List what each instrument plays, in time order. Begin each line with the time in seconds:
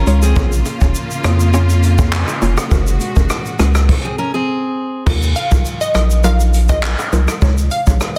Already playing: string section D#3 C#4 F4, steel-string acoustic guitar C#4 A#4
0.07 analog synth bass C#2, synth pluck G#3 D#4 F4 C#5, closed hi-hat, shaker
0.22 steel-string acoustic guitar C4 G#4, shaker
0.36 analog synth bass A#1, string section C#3 A#3 F4, synth pluck A#3 C#4 F4 C#5, kick, high bongo, shaker
0.52 shaker
0.66 closed hi-hat, high bongo, shaker
0.81 analog synth bass F1, synth pluck A#3 C#4 F4 C#5, kick, shaker
0.95 shaker
1.11 shaker
1.24 analog synth bass F2, synth pluck A#3 C#4 F4 C#5, cross-stick, closed hi-hat, low bongo, shaker
1.40 shaker
1.54 synth pluck A#3 C#4 F4 C#5, high bongo, shaker
1.70 shaker
1.83 closed hi-hat, shaker
1.98 synth pluck A#3 C#4 F4 C#5, kick, high bongo, shaker
2.13 cross-stick, clap, shaker
2.28 high bongo, shaker
2.42 analog synth bass F1, synth pluck A#3 C#4 F4 C#5, closed hi-hat, low bongo, shaker
2.57 cross-stick, high bongo, shaker
2.71 analog synth bass F#1, string section A#2 G#3 F#4, synth pluck G#3 C#4 F#4 A#4, kick, high bongo, shaker
2.87 shaker
3.00 closed hi-hat, shaker
3.16 analog synth bass F#1, synth pluck G#3 C#4 F#4 A#4, kick, shaker
3.30 cross-stick, shaker
3.46 shaker
3.59 analog synth bass C#2, synth pluck G#3 C#4 F#4 A#4, cross-stick, closed hi-hat, low bongo, shaker
3.75 cross-stick, shaker
3.89 kick, crash
4.05 steel-string acoustic guitar C4 G#4
4.18 steel-string acoustic guitar C#4 A#4
4.34 steel-string acoustic guitar C4 G#4
5.06 analog synth bass D#2, synth pluck F#3 D#4 F4 A#4, kick, crash, high bongo
5.22 shaker
5.36 synth pluck F5, closed hi-hat, shaker
5.51 analog synth bass C2, synth pluck F#3 D#4 F4 A#4, kick, shaker
5.65 shaker
5.81 synth pluck D#5, shaker
5.94 analog synth bass A#1, synth pluck F#3 D#4 F4 A#4 D#5, cross-stick, closed hi-hat, shaker
6.11 shaker
6.24 synth pluck F#3 D#4 F4 A#4 F5, high bongo, shaker
6.40 shaker
6.54 closed hi-hat, shaker
6.69 synth pluck F#3 D#4 F4 A#4 D#5, kick, high bongo, shaker
6.83 cross-stick, clap, shaker
6.99 high bongo, shaker
7.12 analog synth bass C2, synth pluck F#3 D#4 F4 A#4, closed hi-hat, low bongo, shaker
7.28 cross-stick, shaker
7.42 analog synth bass C#2, synth pluck G#3 D#4 F4 C#5, kick, high bongo, shaker
7.58 shaker
7.71 synth pluck F5, closed hi-hat, shaker
7.87 analog synth bass A#1, synth pluck G#3 D#4 F4 C#5, kick, shaker
8.01 cross-stick, shaker